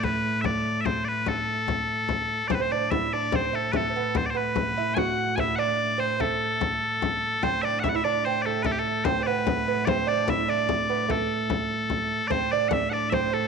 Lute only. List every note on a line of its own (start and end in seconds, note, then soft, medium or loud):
2.50 2.59 C4 medium
2.60 2.71 C4 medium
2.72 2.91 D4 medium
2.92 3.13 E4 medium
3.14 3.34 D4 medium
3.33 3.53 C4 medium
3.53 3.73 A3 medium
3.74 3.88 A3 medium
3.90 3.95 C4 soft
3.96 4.33 B3 medium
4.35 4.77 B3 medium
4.78 4.97 E4 medium
4.97 5.38 F#4 medium
5.38 5.58 E4 medium
5.58 6.00 D4 medium
5.98 6.19 C4 medium
6.20 6.63 A3 medium
7.43 7.62 C4 medium
7.63 7.84 D4 medium
7.85 7.93 E4 medium
7.95 8.04 E4 medium
8.05 8.25 D4 medium
8.26 8.46 C4 medium
8.46 8.65 A3 medium
8.66 8.78 A3 medium
8.79 9.06 A3 medium
9.06 9.19 C4 medium
9.20 9.26 C4 medium
9.27 9.67 B3 medium
9.68 9.88 B3 medium
9.88 10.08 C4 medium
10.07 10.28 D4 medium
10.28 10.48 E4 medium
10.48 10.90 D4 medium
10.89 11.08 B3 medium
11.08 11.86 A3 medium
12.30 12.51 C4 medium
12.53 12.90 D4 medium
12.91 13.12 D4 medium
13.12 13.33 C4 medium
13.34 13.48 A3 medium